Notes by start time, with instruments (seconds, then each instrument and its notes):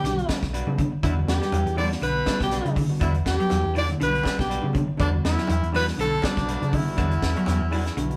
Already playing: tenor saxophone G4, trumpet G4
0.04 picked electric bass B1, clean electric guitar D3, tine electric piano G3 B3 D4 F#4, snare, closed hi-hat, high conga
0.17 muted clean electric guitar stroke, closed hi-hat
0.29 clean electric guitar G3 D4 F#4 B4, kick, snare, closed hi-hat, high conga
0.42 picked electric bass B1, clean electric guitar C#3, muted clean electric guitar stroke, kick, snare, closed hi-hat
0.53 clean electric guitar G3 D4 F#4 B4, closed hi-hat
0.67 picked electric bass C#3, tine electric piano G3 B3 D4 E4, high conga
0.78 clean electric guitar D3, muted clean electric guitar stroke, kick, closed hi-hat, low conga
0.92 muted clean electric guitar stroke
1.03 picked electric bass E2, baritone saxophone E2, clean electric guitar D3 G3 D4 F#4 B4, tenor saxophone E4, trumpet E4, kick, closed hi-hat, low conga
1.17 tine electric piano G3 B3 D4 F#4
1.27 picked electric bass E2, baritone saxophone G2, clean electric guitar G3 D4 F#4 B4, trumpet G4, tenor saxophone G4, snare, closed hi-hat
1.42 clean electric guitar G3, muted clean electric guitar stroke, snare, closed hi-hat
1.52 picked electric bass E2, muted clean electric guitar stroke, closed hi-hat, high conga
1.66 picked electric bass E2, muted clean electric guitar stroke, closed hi-hat
1.76 baritone saxophone D3, clean electric guitar E3 G3 D4 F#4 B4, tine electric piano G3 B3 D4 F#4, trumpet D5, tenor saxophone D5, open hi-hat, high conga
1.91 muted clean electric guitar stroke, snare
2.01 picked electric bass B1, baritone saxophone B2, clean electric guitar D3, trumpet B4, tenor saxophone B4, closed hi-hat, high conga
2.16 muted clean electric guitar stroke
2.26 tine electric piano G3 B3 D4 F#4, clean electric guitar G3 D4 F#4 B4, kick, snare, closed hi-hat, high conga
2.41 picked electric bass B1, baritone saxophone G2, clean electric guitar C#3, tenor saxophone G4, trumpet G4, muted clean electric guitar stroke, kick, snare, closed hi-hat
2.51 clean electric guitar G3 D4 F#4 B4, snare, closed hi-hat
2.65 picked electric bass C#3, closed hi-hat, high conga
2.76 clean electric guitar D3, muted clean electric guitar stroke, kick, open hi-hat, low conga
2.90 tine electric piano G3 B3 D4 F#4, muted clean electric guitar stroke
3.00 picked electric bass E2, baritone saxophone E2, clean electric guitar D3 G3 D4 F#4 B4, tenor saxophone E4, kick, closed hi-hat, low conga
3.04 trumpet E4
3.14 closed hi-hat
3.25 picked electric bass E2, baritone saxophone G2, clean electric guitar G3 D4 F#4 B4, tenor saxophone G4, trumpet G4, kick, snare, closed hi-hat
3.39 clean electric guitar F#3, tine electric piano G3 B3 D4 F#4, muted clean electric guitar stroke, closed hi-hat
3.49 picked electric bass E2, muted clean electric guitar stroke, snare, closed hi-hat, high conga
3.64 picked electric bass E2, muted clean electric guitar stroke
3.75 baritone saxophone D3, clean electric guitar E3 G3 D4 F#4, trumpet D5, tenor saxophone D5, muted clean electric guitar stroke, open hi-hat, high conga
3.89 muted clean electric guitar stroke, closed hi-hat, low conga
3.99 picked electric bass B1, baritone saxophone B2, clean electric guitar D3, tine electric piano G3 B3 D4 F#4, trumpet B4, tenor saxophone B4, closed hi-hat, high conga
4.14 muted clean electric guitar stroke, closed hi-hat
4.23 clean electric guitar G3 D4 F#4 B4, kick, snare, closed hi-hat, high conga
4.39 picked electric bass B1, baritone saxophone G2, clean electric guitar C#3, trumpet G4, tenor saxophone G4, muted clean electric guitar stroke, kick, snare, closed hi-hat
4.49 clean electric guitar G3 D4 F#4 B4, closed hi-hat
4.62 picked electric bass C#3, tine electric piano G3 B3 D4 F#4, high conga
4.73 clean electric guitar D3, muted clean electric guitar stroke, kick, closed hi-hat, high conga, low conga
4.88 muted clean electric guitar stroke
4.97 baritone saxophone D2, picked electric bass E2, clean electric guitar D3 G3 D4 F#4 B4, tenor saxophone D4, trumpet D4, kick, closed hi-hat, low conga
5.12 tine electric piano G3 B3 D4 F#4
5.24 picked electric bass E2, baritone saxophone E2, clean electric guitar G3 D4 F#4 B4, tenor saxophone E4, trumpet E4, snare, closed hi-hat
5.37 clean electric guitar F#3, muted clean electric guitar stroke, snare, closed hi-hat
5.47 picked electric bass E2, muted clean electric guitar stroke, closed hi-hat, high conga
5.62 picked electric bass E2, muted clean electric guitar stroke, closed hi-hat
5.72 clean electric guitar E3 G3 D4 F#4 B4, tine electric piano G3 B3 D4 F#4, tenor saxophone B4, open hi-hat, high conga
5.76 baritone saxophone B2, trumpet B4
5.87 muted clean electric guitar stroke, snare
5.97 picked electric bass B1, baritone saxophone A2, clean electric guitar D3, tenor saxophone A4, trumpet A4, closed hi-hat, high conga
6.11 muted clean electric guitar stroke
6.22 baritone saxophone D2, clean electric guitar G3 D4 F#4 B4, tine electric piano G3 B3 D4 F#4, trumpet D4, tenor saxophone D4, kick, snare, closed hi-hat, high conga
6.36 picked electric bass B1, clean electric guitar C#3, muted clean electric guitar stroke, kick, snare, closed hi-hat
6.47 clean electric guitar G3 D4 F#4 B4, closed hi-hat
6.61 picked electric bass C#3, closed hi-hat, high conga
6.72 baritone saxophone E2, clean electric guitar D3, tenor saxophone E4, trumpet E4, muted clean electric guitar stroke, kick, open hi-hat, high conga, low conga
6.85 tine electric piano G3 B3 D4 F#4, muted clean electric guitar stroke
6.97 picked electric bass E2, clean electric guitar D3 G3 D4 F#4 B4, kick, closed hi-hat, low conga
7.11 closed hi-hat
7.21 picked electric bass E2, clean electric guitar G3 D4 F#4 B4, kick, snare, closed hi-hat
7.36 clean electric guitar F#3, tine electric piano G3 B3 D4 F#4, muted clean electric guitar stroke, closed hi-hat
7.46 picked electric bass E2, muted clean electric guitar stroke, snare, closed hi-hat, high conga
7.60 picked electric bass E2, muted clean electric guitar stroke
7.71 clean electric guitar E3 G3 D4 F#4 B4, open hi-hat, high conga
7.86 muted clean electric guitar stroke, snare, closed hi-hat
7.97 picked electric bass B1, clean electric guitar D3, tine electric piano G3 B3 D4 F#4, closed hi-hat
8.11 muted clean electric guitar stroke, closed hi-hat